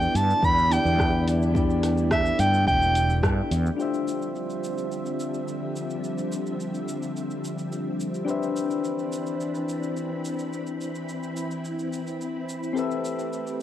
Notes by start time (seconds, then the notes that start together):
Already playing: D3 G3 B3 D4 E4 G4 D5 G5
0.02 cabasa
0.14 G2 A5, open hi-hat, cabasa
0.30 cabasa
0.42 E2 B5, kick, cabasa
0.58 cabasa
0.69 B3 D4 E4 G4 D5 G5, open hi-hat, cabasa
0.85 E2, cabasa
0.99 kick, cross-stick, cabasa
1.27 open hi-hat, cabasa
1.42 cabasa
1.53 A3 B3 D4 E4 G4 D5, kick, cabasa
1.70 cabasa
1.83 cross-stick, open hi-hat, cabasa
1.98 cabasa
2.11 E5, kick, cross-stick, cabasa
2.26 cabasa
2.39 G2 G5, open hi-hat, cabasa
2.54 cabasa
2.67 E1 G5, kick, cabasa
2.82 cabasa
2.95 open hi-hat, cabasa
3.10 cabasa
3.23 G2, kick, cross-stick, cabasa
3.51 E2, open hi-hat, cabasa
3.66 cabasa
3.76 D3 F3 G3 C4 D4 F4 G4 E5, cabasa
3.81 C5 E5
3.94 cabasa
4.08 cabasa
4.22 cabasa
4.36 cabasa
4.50 cabasa
4.64 cabasa
4.78 cabasa
4.92 cabasa
5.06 cabasa
5.20 cabasa
5.34 cabasa
5.48 cabasa
5.76 cabasa
5.90 cabasa
6.04 cabasa
6.18 cabasa
6.32 cabasa
6.46 cabasa
6.60 cabasa
6.75 cabasa
6.88 cabasa
7.03 cabasa
7.17 cabasa
7.31 cabasa
7.45 cabasa
7.59 cabasa
7.73 cabasa
8.01 cabasa
8.15 cabasa
8.25 E3 D4 G4 B4 B5, cabasa
8.29 C5 E5
8.43 cabasa
8.57 cabasa
8.71 cabasa
8.85 cabasa
8.99 cabasa
9.13 cabasa
9.27 cabasa
9.41 cabasa
9.55 cabasa
9.69 cabasa
9.83 cabasa
9.97 cabasa
10.25 cabasa
10.39 cabasa
10.52 E4, cabasa
10.67 cabasa
10.81 cabasa
10.95 cabasa
11.09 cabasa
11.23 cabasa
11.37 cabasa
11.51 cabasa
11.65 cabasa
11.79 cabasa
11.93 cabasa
12.07 cabasa
12.21 cabasa
12.49 cabasa
12.63 cabasa
12.73 A3 C4 G4 A4, cabasa
12.77 B4 E5
12.91 cabasa
13.05 cabasa
13.19 cabasa
13.33 cabasa
13.47 cabasa